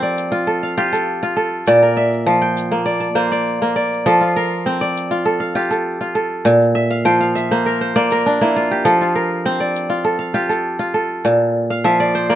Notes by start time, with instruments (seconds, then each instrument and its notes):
Already playing: kora F3 C4 F4 G4 A4 A#4
0.02 kora D5, shaker
0.17 shaker
0.32 kora F4
0.47 kora A4
0.63 kora F5
0.78 kora F4 G4
0.93 kora A4, shaker
1.23 kora F4, shaker
1.37 kora A4
1.67 kora A#2 D5, shaker
1.82 kora A#4
1.97 kora E5
2.13 shaker
2.27 kora F3, shaker
2.42 kora G5
2.57 shaker
2.72 kora A#3
2.86 kora D5, shaker
3.00 kora A5, shaker
3.15 kora A#3 C5
3.32 kora D5, shaker
3.47 shaker
3.62 kora A#3, shaker
3.76 kora D5
3.93 shaker
4.06 kora F3 A4, shaker
4.21 kora F4, shaker
4.36 kora A#4
4.66 kora C4
4.81 kora D5, shaker
4.97 shaker
5.11 kora F4
5.26 kora A4
5.40 kora F5
5.55 kora F4 G4
5.71 kora A4, shaker
6.01 kora F4, shaker
6.15 kora A4
6.45 kora A#2, shaker
6.62 shaker
6.75 kora E5
6.91 kora F5
7.05 kora F3 G5
7.21 kora F5, shaker
7.35 kora E5, shaker
7.51 kora A#3 C5
7.66 kora A#4
7.81 kora C5
7.96 kora A#3 D5
8.11 kora A#4, shaker
8.26 kora D4
8.41 kora A#3 E4, shaker
8.56 kora F4
8.71 kora G4
8.85 kora F3 A4, shaker
9.01 kora F4, shaker
9.15 kora A#4
9.46 kora C4
9.60 kora D5, shaker
9.76 shaker
9.90 kora F4
10.05 kora A4
10.19 kora F5
10.34 kora F4 G4
10.49 kora A4, shaker
10.79 kora F4, shaker
10.94 kora A4
11.25 kora A#2, shaker
11.70 kora F5
11.84 kora F3 E5
12.00 kora D5, shaker
12.15 kora C5, shaker
12.29 kora A#3 D5